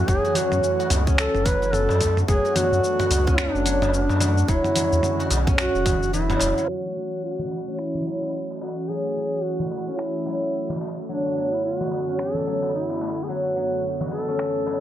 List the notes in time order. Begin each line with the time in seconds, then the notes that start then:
Already playing: E3 A3 C#4 E4 F#4
0.08 F#1 F#3 G#4, kick, mid tom, shaker
0.25 F#4, shaker
0.35 F#3 F#4, closed hi-hat, darbuka dum, shaker
0.52 F#2, mid tom, shaker
0.64 shaker
0.79 F#4, darbuka ka, shaker
0.90 C#2, closed hi-hat, mid tom, darbuka tek, shaker
1.07 C#4, kick, shaker
1.18 A4, finger snap, shaker
1.35 F#1, mid tom, shaker
1.45 F#3 B4, kick, closed hi-hat, darbuka ka, darbuka tek, darbuka dum, shaker
1.62 E4, shaker
1.73 A4, mid tom, shaker
1.89 F#2, darbuka tek, shaker
2.01 A3, kick, closed hi-hat, darbuka tek, shaker
2.17 mid tom, shaker
2.28 F#1 F#3 A3 B3 D4 F#4 G#4, kick, shaker
2.45 F#4, shaker
2.55 F#3 F#4, closed hi-hat, mid tom, darbuka dum, shaker
2.72 F#2, shaker
2.84 shaker
2.99 F#4, mid tom, darbuka ka, shaker
3.11 C#2, closed hi-hat, darbuka tek, shaker
3.27 C#4, kick, shaker
3.38 D4, finger snap, mid tom, shaker
3.55 F#1, shaker
3.66 F#3, closed hi-hat, shaker
3.82 E4, mid tom, darbuka tek, shaker
3.93 D4, shaker
4.09 F#2, darbuka tek, shaker
4.21 A3, closed hi-hat, mid tom, darbuka tek, darbuka dum, shaker
4.38 darbuka ka, shaker
4.48 E1 D3 F#3 G#3 C#4 E4, kick, shaker
4.64 F#4, mid tom, shaker
4.76 F#3, closed hi-hat, darbuka dum, shaker
4.93 E2, shaker
5.03 mid tom, shaker
5.20 F#4, darbuka ka, shaker
5.30 B1, closed hi-hat, darbuka tek, shaker
5.47 C#4, kick, mid tom, shaker
5.58 F#4, finger snap, shaker
5.75 E1, shaker
5.86 E3, kick, closed hi-hat, mid tom, darbuka ka, darbuka tek, darbuka dum, shaker
6.03 shaker
6.13 E3 E4, shaker
6.30 F#3, mid tom, darbuka tek, shaker
6.40 E1, closed hi-hat, darbuka tek, shaker
6.58 F#3, shaker
6.68 E3 F#3 A3 C#4 F#4
6.85 F#4
6.96 F#3
7.24 F#4
7.39 F#4, darbuka ka, darbuka dum
7.51 darbuka tek
7.68 C#4
7.79 E4, finger snap
7.95 darbuka dum
8.06 F#3
8.23 E4, darbuka ka, darbuka tek
8.51 darbuka tek
8.61 A3 F#4, darbuka tek
8.88 F#3 G#4
9.05 F#4
9.17 F#3
9.43 F#4
9.60 F#4, darbuka ka, darbuka dum
9.71 darbuka tek
9.88 C#4
9.98 E4, finger snap
10.26 F#3, darbuka tek
10.43 E4
10.70 darbuka tek, darbuka dum
10.81 A3, darbuka tek
11.09 F#2 D3 F#3 B3 D4
11.25 F#4
11.36 F#3
11.54 E4
11.64 F#4
11.81 F#4, darbuka ka, darbuka dum
11.91 darbuka tek
12.08 C#4
12.19 A4, finger snap
12.35 darbuka dum
12.47 F#3
12.63 E4, darbuka ka, darbuka tek
12.74 E4
12.90 darbuka tek
13.01 A3, darbuka tek
13.23 G#4
13.29 F#3 F#4
13.45 F#4
13.56 F#3
14.01 F#4, darbuka ka, darbuka dum
14.11 A4, darbuka tek
14.28 C#4
14.39 finger snap
14.66 F#3, darbuka tek